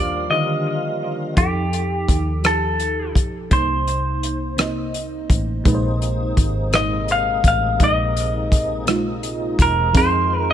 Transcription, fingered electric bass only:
0, 0, Header, 1, 2, 480
1, 0, Start_track
1, 0, Tempo, 714286
1, 924, Time_signature, 6, 3, 24, 8
1, 7079, End_track
2, 0, Start_track
2, 0, Title_t, "Fingered electric bass"
2, 0, Program_c, 0, 33
2, 0, Note_on_c, 0, 39, 107
2, 177, Note_off_c, 0, 39, 0
2, 924, Note_on_c, 0, 41, 90
2, 1377, Note_off_c, 0, 41, 0
2, 1404, Note_on_c, 0, 39, 79
2, 2122, Note_off_c, 0, 39, 0
2, 2122, Note_on_c, 0, 35, 76
2, 2339, Note_off_c, 0, 35, 0
2, 2363, Note_on_c, 0, 36, 95
2, 3537, Note_off_c, 0, 36, 0
2, 3564, Note_on_c, 0, 33, 73
2, 3780, Note_off_c, 0, 33, 0
2, 3804, Note_on_c, 0, 34, 88
2, 4257, Note_off_c, 0, 34, 0
2, 4286, Note_on_c, 0, 32, 79
2, 4978, Note_off_c, 0, 32, 0
2, 5003, Note_on_c, 0, 33, 86
2, 5220, Note_off_c, 0, 33, 0
2, 5247, Note_on_c, 0, 34, 104
2, 6418, Note_off_c, 0, 34, 0
2, 6446, Note_on_c, 0, 28, 84
2, 6661, Note_off_c, 0, 28, 0
2, 6686, Note_on_c, 0, 41, 118
2, 7079, Note_off_c, 0, 41, 0
2, 7079, End_track
0, 0, End_of_file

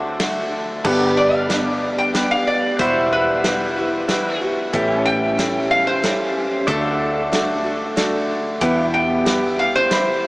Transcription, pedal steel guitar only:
0, 0, Header, 1, 2, 480
1, 0, Start_track
1, 0, Key_signature, 1, "major"
1, 0, Tempo, 647249
1, 633, Time_signature, 3, 2, 24, 8
1, 7616, End_track
2, 0, Start_track
2, 0, Title_t, "Pedal steel guitar"
2, 0, Program_c, 0, 26
2, 0, Note_on_c, 0, 69, 68
2, 0, Note_on_c, 0, 74, 66
2, 0, Note_on_c, 0, 78, 63
2, 622, Note_off_c, 0, 69, 0
2, 624, Note_off_c, 0, 74, 0
2, 627, Note_on_c, 0, 69, 60
2, 628, Note_off_c, 0, 78, 0
2, 638, Note_on_c, 0, 74, 69
2, 644, Note_on_c, 0, 78, 65
2, 792, Note_off_c, 0, 78, 0
2, 792, Note_on_c, 0, 79, 65
2, 812, Note_off_c, 0, 69, 0
2, 812, Note_on_c, 0, 71, 60
2, 2057, Note_off_c, 0, 71, 0
2, 2062, Note_off_c, 0, 74, 0
2, 2065, Note_off_c, 0, 79, 0
2, 2081, Note_on_c, 0, 76, 63
2, 2089, Note_on_c, 0, 78, 67
2, 3504, Note_off_c, 0, 76, 0
2, 3507, Note_off_c, 0, 78, 0
2, 3513, Note_on_c, 0, 59, 69
2, 3521, Note_on_c, 0, 76, 71
2, 3527, Note_on_c, 0, 79, 62
2, 3698, Note_off_c, 0, 59, 0
2, 3698, Note_on_c, 0, 61, 69
2, 3713, Note_off_c, 0, 79, 0
2, 3713, Note_on_c, 0, 81, 62
2, 4938, Note_off_c, 0, 61, 0
2, 4942, Note_off_c, 0, 76, 0
2, 4945, Note_off_c, 0, 81, 0
2, 4946, Note_on_c, 0, 74, 75
2, 4953, Note_on_c, 0, 76, 71
2, 4960, Note_on_c, 0, 81, 73
2, 5138, Note_off_c, 0, 76, 0
2, 5138, Note_on_c, 0, 78, 71
2, 6373, Note_off_c, 0, 74, 0
2, 6376, Note_off_c, 0, 78, 0
2, 6380, Note_off_c, 0, 81, 0
2, 6388, Note_on_c, 0, 67, 68
2, 6397, Note_on_c, 0, 78, 69
2, 6400, Note_on_c, 0, 79, 68
2, 6582, Note_off_c, 0, 78, 0
2, 6582, Note_on_c, 0, 76, 69
2, 7616, Note_off_c, 0, 67, 0
2, 7616, Note_off_c, 0, 76, 0
2, 7616, Note_off_c, 0, 79, 0
2, 7616, End_track
0, 0, End_of_file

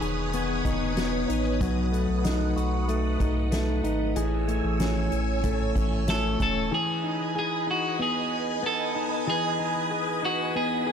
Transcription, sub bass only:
0, 0, Header, 1, 2, 480
1, 0, Start_track
1, 0, Key_signature, 4, "major"
1, 0, Tempo, 638298
1, 1212, Time_signature, 4, 2, 24, 8
1, 8212, End_track
2, 0, Start_track
2, 0, Title_t, "Sub bass"
2, 0, Program_c, 0, 38
2, 12, Note_on_c, 0, 28, 86
2, 468, Note_off_c, 0, 28, 0
2, 491, Note_on_c, 0, 28, 89
2, 948, Note_off_c, 0, 28, 0
2, 972, Note_on_c, 0, 33, 82
2, 1211, Note_on_c, 0, 35, 89
2, 1222, Note_off_c, 0, 33, 0
2, 1554, Note_off_c, 0, 35, 0
2, 1574, Note_on_c, 0, 35, 95
2, 1915, Note_off_c, 0, 35, 0
2, 1927, Note_on_c, 0, 35, 81
2, 2385, Note_off_c, 0, 35, 0
2, 2409, Note_on_c, 0, 35, 87
2, 2867, Note_off_c, 0, 35, 0
2, 2885, Note_on_c, 0, 32, 79
2, 3117, Note_off_c, 0, 32, 0
2, 3127, Note_on_c, 0, 33, 86
2, 3471, Note_off_c, 0, 33, 0
2, 3490, Note_on_c, 0, 33, 95
2, 3833, Note_off_c, 0, 33, 0
2, 3852, Note_on_c, 0, 33, 92
2, 4308, Note_off_c, 0, 33, 0
2, 4329, Note_on_c, 0, 33, 85
2, 4786, Note_off_c, 0, 33, 0
2, 4817, Note_on_c, 0, 27, 86
2, 5042, Note_off_c, 0, 27, 0
2, 8212, End_track
0, 0, End_of_file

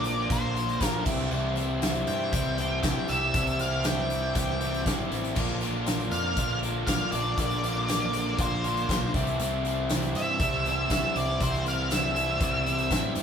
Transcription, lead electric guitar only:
0, 0, Header, 1, 2, 480
1, 0, Start_track
1, 0, Tempo, 506329
1, 1251, Time_signature, 4, 2, 24, 8
1, 6048, Tempo, 502092
1, 12595, End_track
2, 0, Start_track
2, 0, Title_t, "Lead electric guitar"
2, 0, Program_c, 0, 29
2, 0, Note_on_c, 0, 74, 102
2, 262, Note_off_c, 0, 74, 0
2, 305, Note_on_c, 0, 72, 75
2, 798, Note_off_c, 0, 72, 0
2, 798, Note_on_c, 0, 70, 75
2, 981, Note_off_c, 0, 70, 0
2, 1970, Note_on_c, 0, 79, 114
2, 2654, Note_off_c, 0, 79, 0
2, 2685, Note_on_c, 0, 79, 103
2, 2932, Note_on_c, 0, 76, 93
2, 2936, Note_off_c, 0, 79, 0
2, 3416, Note_off_c, 0, 76, 0
2, 3420, Note_on_c, 0, 77, 79
2, 3657, Note_on_c, 0, 79, 101
2, 3663, Note_off_c, 0, 77, 0
2, 4129, Note_off_c, 0, 79, 0
2, 4141, Note_on_c, 0, 79, 85
2, 4582, Note_off_c, 0, 79, 0
2, 5799, Note_on_c, 0, 77, 116
2, 6249, Note_off_c, 0, 77, 0
2, 6513, Note_on_c, 0, 77, 102
2, 6750, Note_off_c, 0, 77, 0
2, 6754, Note_on_c, 0, 74, 91
2, 7003, Note_off_c, 0, 74, 0
2, 7014, Note_on_c, 0, 74, 100
2, 7989, Note_on_c, 0, 72, 78
2, 8003, Note_off_c, 0, 74, 0
2, 8663, Note_off_c, 0, 72, 0
2, 9664, Note_on_c, 0, 76, 102
2, 10371, Note_off_c, 0, 76, 0
2, 10382, Note_on_c, 0, 76, 96
2, 10624, Note_off_c, 0, 76, 0
2, 10631, Note_on_c, 0, 74, 95
2, 10868, Note_off_c, 0, 74, 0
2, 10873, Note_on_c, 0, 72, 94
2, 11086, Note_off_c, 0, 72, 0
2, 11113, Note_on_c, 0, 77, 97
2, 11346, Note_off_c, 0, 77, 0
2, 11350, Note_on_c, 0, 76, 99
2, 12499, Note_off_c, 0, 76, 0
2, 12595, End_track
0, 0, End_of_file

